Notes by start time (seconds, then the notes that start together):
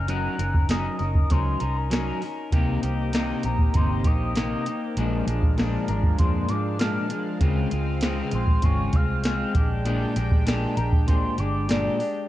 Already playing: F#1
0.08 F#3 C#4 D#4 A#4 F#6, closed hi-hat
0.38 F#1 C#4 D#4 A#4, closed hi-hat
0.54 kick
0.69 F#3 C#4 D#4 A#4 D#6, snare, closed hi-hat
0.99 F#1 C#4 D#4 A#4, closed hi-hat
1.15 kick
1.30 C#2 F#3 C#4 D#4 A#4 C6, kick, snare, closed hi-hat
1.60 C2 C#4 D#4 A#4, closed hi-hat
1.76 A#5
1.90 F#3 C#4 D#4 A#4, snare, closed hi-hat
2.21 C#4 D#4 A#4, open hi-hat
2.52 C2 C3 A#3 C4 D#4 G4 A#4 D#5, kick, closed hi-hat
2.83 C2 A#3 D#4 G4, closed hi-hat
3.13 C3 A#3 D#4 G4, snare, closed hi-hat
3.43 A#1 A#3 D#4 G4 A#5, closed hi-hat
3.59 kick
3.74 G1 C3 A#3 D#4 G4 C6, kick, closed hi-hat
4.04 A#1 A#3 D#4 G4 D#6, kick, closed hi-hat
4.35 C3 A#3 D#4 G4 D#6, snare, closed hi-hat
4.66 A#3 D#4 G4, closed hi-hat
4.97 A#1 A#2 F3 G#3 D4 F5, closed hi-hat
5.27 A#1 F3 G#3 D4, closed hi-hat
5.42 kick
5.57 A#2 F3 G#3 D4, snare, closed hi-hat
5.88 G#1 F3 G#3 D4 A#5, closed hi-hat
6.03 kick
6.18 F2 A#2 F3 G#3 D4 C6, kick, closed hi-hat
6.48 G#2 F3 G#3 D4 D6, closed hi-hat
6.79 A#2 F3 G#3 D4 F6, snare, closed hi-hat
7.10 F3 G#3 D4, closed hi-hat
7.41 C#2 C#3 G#3 C4 F4, kick, closed hi-hat
7.71 C#2 G#3 C4 F4, closed hi-hat
8.01 C#3 G#3 C4 F4, snare, closed hi-hat
8.31 A#1 G#3 C4 F4 C6, closed hi-hat
8.48 kick
8.62 G#1 C#3 G#3 C4 F4 C#6, kick, closed hi-hat
8.93 C2 G#3 C4 F4 F6, kick, closed hi-hat
9.24 G#3 C4 F4 F6, snare, closed hi-hat
9.55 A#1 G#3 D4 G4 G5, kick, closed hi-hat
9.85 A#2 G#3 D4 G4, closed hi-hat
10.16 A#1 G#3 D4 G4, closed hi-hat
10.31 kick
10.46 A#2 G#3 D4 G4, snare, closed hi-hat
10.76 A#1 G#3 D4 G4 A#5, closed hi-hat
10.92 kick
11.06 A#2 G#3 D4 G4 C6, kick, snare, closed hi-hat
11.38 G1 G#3 D4 G4 D6, closed hi-hat
11.68 A#2 G#3 D4 G4 D5, snare, closed hi-hat
11.98 G#3 D4 G4, open hi-hat